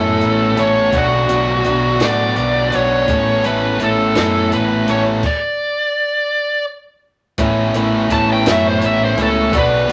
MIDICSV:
0, 0, Header, 1, 7, 480
1, 0, Start_track
1, 0, Key_signature, 3, "major"
1, 0, Tempo, 716846
1, 621, Time_signature, 6, 3, 24, 8
1, 6645, End_track
2, 0, Start_track
2, 0, Title_t, "Analog synth pad"
2, 0, Program_c, 0, 89
2, 4958, Note_on_c, 0, 85, 73
2, 4959, Note_on_c, 0, 71, 59
2, 4962, Note_on_c, 0, 81, 59
2, 6372, Note_off_c, 0, 85, 0
2, 6374, Note_off_c, 0, 81, 0
2, 6377, Note_on_c, 0, 78, 65
2, 6377, Note_on_c, 0, 86, 75
2, 6645, Note_off_c, 0, 71, 0
2, 6645, Note_off_c, 0, 78, 0
2, 6645, Note_off_c, 0, 86, 0
2, 6645, End_track
3, 0, Start_track
3, 0, Title_t, "Lead electric guitar"
3, 0, Program_c, 1, 29
3, 0, Note_on_c, 1, 69, 78
3, 396, Note_on_c, 1, 73, 73
3, 411, Note_off_c, 1, 69, 0
3, 635, Note_off_c, 1, 73, 0
3, 649, Note_on_c, 1, 66, 73
3, 1370, Note_on_c, 1, 74, 75
3, 1377, Note_off_c, 1, 66, 0
3, 1843, Note_off_c, 1, 74, 0
3, 1845, Note_on_c, 1, 73, 79
3, 2313, Note_off_c, 1, 73, 0
3, 2316, Note_on_c, 1, 71, 80
3, 2556, Note_off_c, 1, 71, 0
3, 2565, Note_on_c, 1, 69, 73
3, 3007, Note_off_c, 1, 69, 0
3, 3038, Note_on_c, 1, 71, 70
3, 3277, Note_off_c, 1, 71, 0
3, 3282, Note_on_c, 1, 73, 70
3, 3344, Note_off_c, 1, 73, 0
3, 3524, Note_on_c, 1, 74, 80
3, 4446, Note_off_c, 1, 74, 0
3, 5441, Note_on_c, 1, 81, 69
3, 5547, Note_off_c, 1, 81, 0
3, 5575, Note_on_c, 1, 79, 75
3, 5696, Note_off_c, 1, 79, 0
3, 5696, Note_on_c, 1, 76, 83
3, 5795, Note_off_c, 1, 76, 0
3, 5811, Note_on_c, 1, 72, 72
3, 5912, Note_off_c, 1, 72, 0
3, 5933, Note_on_c, 1, 76, 72
3, 6033, Note_off_c, 1, 76, 0
3, 6057, Note_on_c, 1, 72, 79
3, 6155, Note_off_c, 1, 72, 0
3, 6173, Note_on_c, 1, 69, 68
3, 6388, Note_off_c, 1, 69, 0
3, 6416, Note_on_c, 1, 71, 93
3, 6629, Note_off_c, 1, 71, 0
3, 6645, End_track
4, 0, Start_track
4, 0, Title_t, "Clean electric guitar"
4, 0, Program_c, 2, 27
4, 0, Note_on_c, 2, 57, 80
4, 0, Note_on_c, 2, 59, 85
4, 0, Note_on_c, 2, 64, 83
4, 0, Note_on_c, 2, 69, 86
4, 0, Note_on_c, 2, 73, 88
4, 368, Note_off_c, 2, 57, 0
4, 376, Note_on_c, 2, 57, 67
4, 378, Note_off_c, 2, 64, 0
4, 379, Note_off_c, 2, 69, 0
4, 380, Note_off_c, 2, 59, 0
4, 383, Note_on_c, 2, 59, 71
4, 385, Note_off_c, 2, 73, 0
4, 386, Note_on_c, 2, 64, 60
4, 387, Note_on_c, 2, 69, 68
4, 393, Note_on_c, 2, 73, 72
4, 604, Note_off_c, 2, 57, 0
4, 609, Note_off_c, 2, 64, 0
4, 609, Note_off_c, 2, 69, 0
4, 613, Note_off_c, 2, 73, 0
4, 619, Note_on_c, 2, 47, 92
4, 619, Note_on_c, 2, 54, 82
4, 620, Note_off_c, 2, 59, 0
4, 623, Note_on_c, 2, 59, 90
4, 629, Note_on_c, 2, 62, 85
4, 630, Note_on_c, 2, 66, 88
4, 634, Note_on_c, 2, 74, 96
4, 855, Note_off_c, 2, 47, 0
4, 858, Note_off_c, 2, 54, 0
4, 863, Note_on_c, 2, 47, 70
4, 865, Note_off_c, 2, 59, 0
4, 866, Note_off_c, 2, 62, 0
4, 866, Note_on_c, 2, 54, 71
4, 868, Note_on_c, 2, 59, 65
4, 869, Note_off_c, 2, 66, 0
4, 873, Note_off_c, 2, 74, 0
4, 874, Note_on_c, 2, 62, 75
4, 877, Note_on_c, 2, 66, 76
4, 881, Note_on_c, 2, 74, 66
4, 1087, Note_off_c, 2, 47, 0
4, 1095, Note_off_c, 2, 54, 0
4, 1095, Note_on_c, 2, 47, 75
4, 1102, Note_off_c, 2, 62, 0
4, 1103, Note_on_c, 2, 54, 73
4, 1105, Note_off_c, 2, 66, 0
4, 1106, Note_off_c, 2, 59, 0
4, 1107, Note_off_c, 2, 74, 0
4, 1108, Note_on_c, 2, 59, 74
4, 1110, Note_on_c, 2, 62, 75
4, 1113, Note_on_c, 2, 66, 81
4, 1115, Note_on_c, 2, 74, 75
4, 1337, Note_off_c, 2, 47, 0
4, 1345, Note_off_c, 2, 54, 0
4, 1345, Note_on_c, 2, 47, 76
4, 1351, Note_off_c, 2, 62, 0
4, 1352, Note_off_c, 2, 59, 0
4, 1353, Note_on_c, 2, 54, 88
4, 1354, Note_off_c, 2, 66, 0
4, 1354, Note_on_c, 2, 59, 80
4, 1357, Note_off_c, 2, 74, 0
4, 1359, Note_on_c, 2, 62, 90
4, 1362, Note_on_c, 2, 66, 92
4, 1366, Note_on_c, 2, 74, 86
4, 1821, Note_off_c, 2, 47, 0
4, 1825, Note_off_c, 2, 54, 0
4, 1829, Note_on_c, 2, 47, 69
4, 1833, Note_off_c, 2, 62, 0
4, 1833, Note_on_c, 2, 54, 74
4, 1835, Note_off_c, 2, 66, 0
4, 1836, Note_off_c, 2, 59, 0
4, 1838, Note_off_c, 2, 74, 0
4, 1839, Note_on_c, 2, 59, 81
4, 1841, Note_on_c, 2, 62, 67
4, 1843, Note_on_c, 2, 66, 77
4, 1846, Note_on_c, 2, 74, 74
4, 2051, Note_off_c, 2, 47, 0
4, 2053, Note_off_c, 2, 54, 0
4, 2057, Note_off_c, 2, 62, 0
4, 2058, Note_off_c, 2, 66, 0
4, 2060, Note_off_c, 2, 74, 0
4, 2065, Note_on_c, 2, 57, 83
4, 2066, Note_off_c, 2, 59, 0
4, 2069, Note_on_c, 2, 59, 100
4, 2073, Note_on_c, 2, 64, 85
4, 2077, Note_on_c, 2, 69, 93
4, 2079, Note_on_c, 2, 73, 97
4, 2302, Note_off_c, 2, 57, 0
4, 2308, Note_off_c, 2, 59, 0
4, 2310, Note_on_c, 2, 57, 74
4, 2314, Note_off_c, 2, 64, 0
4, 2316, Note_off_c, 2, 69, 0
4, 2316, Note_on_c, 2, 59, 73
4, 2319, Note_off_c, 2, 73, 0
4, 2322, Note_on_c, 2, 64, 83
4, 2324, Note_on_c, 2, 69, 73
4, 2327, Note_on_c, 2, 73, 74
4, 2542, Note_off_c, 2, 57, 0
4, 2547, Note_off_c, 2, 59, 0
4, 2550, Note_off_c, 2, 64, 0
4, 2550, Note_on_c, 2, 57, 67
4, 2554, Note_off_c, 2, 69, 0
4, 2555, Note_off_c, 2, 73, 0
4, 2555, Note_on_c, 2, 59, 69
4, 2558, Note_on_c, 2, 64, 77
4, 2562, Note_on_c, 2, 69, 80
4, 2563, Note_on_c, 2, 73, 82
4, 2777, Note_off_c, 2, 57, 0
4, 2780, Note_off_c, 2, 59, 0
4, 2785, Note_on_c, 2, 57, 88
4, 2786, Note_off_c, 2, 64, 0
4, 2788, Note_off_c, 2, 69, 0
4, 2788, Note_on_c, 2, 59, 96
4, 2794, Note_on_c, 2, 64, 85
4, 2796, Note_off_c, 2, 73, 0
4, 2797, Note_on_c, 2, 69, 86
4, 2804, Note_on_c, 2, 73, 88
4, 3259, Note_off_c, 2, 57, 0
4, 3262, Note_off_c, 2, 59, 0
4, 3265, Note_off_c, 2, 64, 0
4, 3267, Note_on_c, 2, 57, 69
4, 3270, Note_on_c, 2, 59, 67
4, 3273, Note_off_c, 2, 69, 0
4, 3273, Note_on_c, 2, 64, 69
4, 3274, Note_off_c, 2, 73, 0
4, 3281, Note_on_c, 2, 69, 73
4, 3283, Note_on_c, 2, 73, 76
4, 3491, Note_off_c, 2, 57, 0
4, 3492, Note_off_c, 2, 59, 0
4, 3494, Note_off_c, 2, 64, 0
4, 3498, Note_off_c, 2, 69, 0
4, 3498, Note_off_c, 2, 73, 0
4, 4946, Note_on_c, 2, 57, 83
4, 4952, Note_on_c, 2, 59, 85
4, 4957, Note_on_c, 2, 64, 94
4, 4957, Note_on_c, 2, 69, 95
4, 4958, Note_on_c, 2, 73, 110
4, 5174, Note_off_c, 2, 57, 0
4, 5180, Note_off_c, 2, 59, 0
4, 5180, Note_off_c, 2, 64, 0
4, 5182, Note_on_c, 2, 57, 72
4, 5183, Note_on_c, 2, 59, 75
4, 5187, Note_off_c, 2, 69, 0
4, 5188, Note_on_c, 2, 64, 71
4, 5189, Note_off_c, 2, 73, 0
4, 5195, Note_on_c, 2, 69, 72
4, 5197, Note_on_c, 2, 73, 83
4, 5411, Note_off_c, 2, 57, 0
4, 5419, Note_on_c, 2, 57, 74
4, 5420, Note_off_c, 2, 64, 0
4, 5421, Note_off_c, 2, 59, 0
4, 5422, Note_off_c, 2, 69, 0
4, 5424, Note_on_c, 2, 59, 75
4, 5427, Note_off_c, 2, 73, 0
4, 5428, Note_on_c, 2, 64, 84
4, 5430, Note_on_c, 2, 69, 91
4, 5435, Note_on_c, 2, 73, 80
4, 5654, Note_off_c, 2, 57, 0
4, 5660, Note_off_c, 2, 64, 0
4, 5662, Note_on_c, 2, 57, 93
4, 5663, Note_off_c, 2, 59, 0
4, 5665, Note_on_c, 2, 59, 79
4, 5667, Note_off_c, 2, 69, 0
4, 5668, Note_off_c, 2, 73, 0
4, 5668, Note_on_c, 2, 64, 87
4, 5675, Note_on_c, 2, 69, 83
4, 5676, Note_on_c, 2, 73, 103
4, 6122, Note_off_c, 2, 57, 0
4, 6131, Note_on_c, 2, 57, 79
4, 6134, Note_off_c, 2, 59, 0
4, 6134, Note_off_c, 2, 64, 0
4, 6136, Note_on_c, 2, 59, 69
4, 6139, Note_off_c, 2, 73, 0
4, 6141, Note_off_c, 2, 69, 0
4, 6142, Note_on_c, 2, 64, 71
4, 6147, Note_on_c, 2, 73, 75
4, 6149, Note_on_c, 2, 69, 85
4, 6360, Note_off_c, 2, 57, 0
4, 6365, Note_off_c, 2, 64, 0
4, 6368, Note_off_c, 2, 73, 0
4, 6369, Note_off_c, 2, 69, 0
4, 6372, Note_on_c, 2, 47, 82
4, 6378, Note_on_c, 2, 54, 89
4, 6380, Note_off_c, 2, 59, 0
4, 6383, Note_on_c, 2, 59, 94
4, 6385, Note_on_c, 2, 62, 93
4, 6385, Note_on_c, 2, 66, 104
4, 6392, Note_on_c, 2, 74, 99
4, 6608, Note_off_c, 2, 47, 0
4, 6612, Note_off_c, 2, 54, 0
4, 6616, Note_off_c, 2, 62, 0
4, 6616, Note_on_c, 2, 47, 78
4, 6620, Note_on_c, 2, 54, 74
4, 6622, Note_off_c, 2, 59, 0
4, 6622, Note_off_c, 2, 74, 0
4, 6624, Note_off_c, 2, 66, 0
4, 6624, Note_on_c, 2, 62, 78
4, 6645, Note_off_c, 2, 47, 0
4, 6645, Note_off_c, 2, 54, 0
4, 6645, Note_off_c, 2, 62, 0
4, 6645, End_track
5, 0, Start_track
5, 0, Title_t, "Overdriven electric guitar"
5, 0, Program_c, 3, 29
5, 0, Note_on_c, 3, 45, 77
5, 0, Note_on_c, 3, 52, 77
5, 0, Note_on_c, 3, 61, 76
5, 361, Note_off_c, 3, 45, 0
5, 367, Note_off_c, 3, 52, 0
5, 369, Note_on_c, 3, 45, 73
5, 375, Note_off_c, 3, 61, 0
5, 375, Note_on_c, 3, 52, 65
5, 383, Note_on_c, 3, 61, 76
5, 600, Note_off_c, 3, 45, 0
5, 604, Note_off_c, 3, 52, 0
5, 607, Note_off_c, 3, 61, 0
5, 2060, Note_on_c, 3, 45, 79
5, 2066, Note_on_c, 3, 52, 78
5, 2073, Note_on_c, 3, 61, 88
5, 2294, Note_off_c, 3, 45, 0
5, 2301, Note_off_c, 3, 52, 0
5, 2302, Note_on_c, 3, 45, 81
5, 2309, Note_on_c, 3, 52, 84
5, 2311, Note_off_c, 3, 61, 0
5, 2319, Note_on_c, 3, 61, 83
5, 2529, Note_off_c, 3, 45, 0
5, 2533, Note_off_c, 3, 52, 0
5, 2537, Note_on_c, 3, 45, 75
5, 2540, Note_off_c, 3, 61, 0
5, 2541, Note_on_c, 3, 52, 82
5, 2548, Note_on_c, 3, 61, 82
5, 2771, Note_off_c, 3, 45, 0
5, 2771, Note_off_c, 3, 52, 0
5, 2779, Note_off_c, 3, 61, 0
5, 2779, Note_on_c, 3, 45, 77
5, 2779, Note_on_c, 3, 52, 92
5, 2787, Note_on_c, 3, 61, 78
5, 3251, Note_off_c, 3, 45, 0
5, 3254, Note_off_c, 3, 52, 0
5, 3259, Note_on_c, 3, 45, 70
5, 3262, Note_on_c, 3, 52, 71
5, 3263, Note_off_c, 3, 61, 0
5, 3271, Note_on_c, 3, 61, 74
5, 3487, Note_off_c, 3, 45, 0
5, 3488, Note_off_c, 3, 52, 0
5, 3492, Note_off_c, 3, 61, 0
5, 4944, Note_on_c, 3, 45, 79
5, 4948, Note_on_c, 3, 52, 88
5, 4953, Note_on_c, 3, 61, 83
5, 5179, Note_off_c, 3, 45, 0
5, 5183, Note_off_c, 3, 52, 0
5, 5187, Note_on_c, 3, 45, 73
5, 5191, Note_off_c, 3, 61, 0
5, 5191, Note_on_c, 3, 52, 84
5, 5199, Note_on_c, 3, 61, 92
5, 5410, Note_off_c, 3, 45, 0
5, 5413, Note_off_c, 3, 52, 0
5, 5418, Note_on_c, 3, 45, 77
5, 5421, Note_on_c, 3, 52, 82
5, 5426, Note_off_c, 3, 61, 0
5, 5434, Note_on_c, 3, 61, 78
5, 5654, Note_off_c, 3, 45, 0
5, 5658, Note_off_c, 3, 52, 0
5, 5662, Note_on_c, 3, 45, 86
5, 5665, Note_off_c, 3, 61, 0
5, 5666, Note_on_c, 3, 52, 86
5, 5673, Note_on_c, 3, 61, 96
5, 6131, Note_off_c, 3, 45, 0
5, 6133, Note_off_c, 3, 52, 0
5, 6139, Note_on_c, 3, 45, 66
5, 6141, Note_on_c, 3, 52, 77
5, 6144, Note_off_c, 3, 61, 0
5, 6152, Note_on_c, 3, 61, 76
5, 6364, Note_off_c, 3, 45, 0
5, 6365, Note_off_c, 3, 52, 0
5, 6370, Note_off_c, 3, 61, 0
5, 6645, End_track
6, 0, Start_track
6, 0, Title_t, "Fingered electric bass"
6, 0, Program_c, 4, 33
6, 0, Note_on_c, 4, 42, 82
6, 135, Note_off_c, 4, 42, 0
6, 149, Note_on_c, 4, 33, 71
6, 375, Note_off_c, 4, 33, 0
6, 392, Note_on_c, 4, 33, 79
6, 617, Note_off_c, 4, 33, 0
6, 624, Note_on_c, 4, 35, 80
6, 852, Note_off_c, 4, 35, 0
6, 867, Note_on_c, 4, 35, 72
6, 1094, Note_off_c, 4, 35, 0
6, 1112, Note_on_c, 4, 35, 73
6, 1337, Note_off_c, 4, 35, 0
6, 1345, Note_on_c, 4, 45, 80
6, 1574, Note_off_c, 4, 45, 0
6, 1584, Note_on_c, 4, 35, 76
6, 1813, Note_off_c, 4, 35, 0
6, 1834, Note_on_c, 4, 35, 82
6, 2058, Note_off_c, 4, 35, 0
6, 2066, Note_on_c, 4, 33, 81
6, 2295, Note_off_c, 4, 33, 0
6, 2314, Note_on_c, 4, 33, 72
6, 2539, Note_off_c, 4, 33, 0
6, 2548, Note_on_c, 4, 33, 67
6, 2776, Note_off_c, 4, 33, 0
6, 2794, Note_on_c, 4, 42, 81
6, 3019, Note_off_c, 4, 42, 0
6, 3037, Note_on_c, 4, 33, 76
6, 3261, Note_off_c, 4, 33, 0
6, 3272, Note_on_c, 4, 33, 84
6, 3498, Note_off_c, 4, 33, 0
6, 4947, Note_on_c, 4, 33, 85
6, 5174, Note_off_c, 4, 33, 0
6, 5184, Note_on_c, 4, 33, 79
6, 5412, Note_off_c, 4, 33, 0
6, 5427, Note_on_c, 4, 33, 74
6, 5654, Note_off_c, 4, 33, 0
6, 5668, Note_on_c, 4, 42, 86
6, 5894, Note_off_c, 4, 42, 0
6, 5907, Note_on_c, 4, 33, 81
6, 6133, Note_off_c, 4, 33, 0
6, 6144, Note_on_c, 4, 37, 87
6, 6371, Note_off_c, 4, 37, 0
6, 6383, Note_on_c, 4, 35, 89
6, 6610, Note_off_c, 4, 35, 0
6, 6624, Note_on_c, 4, 35, 74
6, 6645, Note_off_c, 4, 35, 0
6, 6645, End_track
7, 0, Start_track
7, 0, Title_t, "Drums"
7, 140, Note_on_c, 9, 42, 54
7, 207, Note_off_c, 9, 42, 0
7, 381, Note_on_c, 9, 42, 56
7, 448, Note_off_c, 9, 42, 0
7, 617, Note_on_c, 9, 42, 68
7, 620, Note_on_c, 9, 36, 96
7, 684, Note_off_c, 9, 42, 0
7, 687, Note_off_c, 9, 36, 0
7, 862, Note_on_c, 9, 42, 60
7, 929, Note_off_c, 9, 42, 0
7, 1100, Note_on_c, 9, 42, 55
7, 1167, Note_off_c, 9, 42, 0
7, 1339, Note_on_c, 9, 42, 69
7, 1346, Note_on_c, 9, 38, 100
7, 1405, Note_off_c, 9, 42, 0
7, 1413, Note_off_c, 9, 38, 0
7, 1579, Note_on_c, 9, 42, 50
7, 1646, Note_off_c, 9, 42, 0
7, 1821, Note_on_c, 9, 42, 53
7, 1888, Note_off_c, 9, 42, 0
7, 2061, Note_on_c, 9, 42, 66
7, 2062, Note_on_c, 9, 36, 97
7, 2128, Note_off_c, 9, 42, 0
7, 2129, Note_off_c, 9, 36, 0
7, 2302, Note_on_c, 9, 42, 58
7, 2369, Note_off_c, 9, 42, 0
7, 2542, Note_on_c, 9, 42, 55
7, 2609, Note_off_c, 9, 42, 0
7, 2779, Note_on_c, 9, 42, 70
7, 2786, Note_on_c, 9, 38, 103
7, 2846, Note_off_c, 9, 42, 0
7, 2853, Note_off_c, 9, 38, 0
7, 3025, Note_on_c, 9, 42, 49
7, 3092, Note_off_c, 9, 42, 0
7, 3265, Note_on_c, 9, 42, 60
7, 3332, Note_off_c, 9, 42, 0
7, 3501, Note_on_c, 9, 49, 68
7, 3503, Note_on_c, 9, 36, 87
7, 3568, Note_off_c, 9, 49, 0
7, 3570, Note_off_c, 9, 36, 0
7, 4939, Note_on_c, 9, 42, 80
7, 4943, Note_on_c, 9, 36, 90
7, 5006, Note_off_c, 9, 42, 0
7, 5010, Note_off_c, 9, 36, 0
7, 5182, Note_on_c, 9, 42, 64
7, 5249, Note_off_c, 9, 42, 0
7, 5423, Note_on_c, 9, 36, 74
7, 5424, Note_on_c, 9, 42, 66
7, 5490, Note_off_c, 9, 36, 0
7, 5491, Note_off_c, 9, 42, 0
7, 5663, Note_on_c, 9, 42, 89
7, 5671, Note_on_c, 9, 38, 109
7, 5730, Note_off_c, 9, 42, 0
7, 5738, Note_off_c, 9, 38, 0
7, 5902, Note_on_c, 9, 42, 64
7, 5969, Note_off_c, 9, 42, 0
7, 6143, Note_on_c, 9, 42, 58
7, 6210, Note_off_c, 9, 42, 0
7, 6380, Note_on_c, 9, 42, 85
7, 6381, Note_on_c, 9, 36, 113
7, 6447, Note_off_c, 9, 42, 0
7, 6448, Note_off_c, 9, 36, 0
7, 6625, Note_on_c, 9, 42, 68
7, 6645, Note_off_c, 9, 42, 0
7, 6645, End_track
0, 0, End_of_file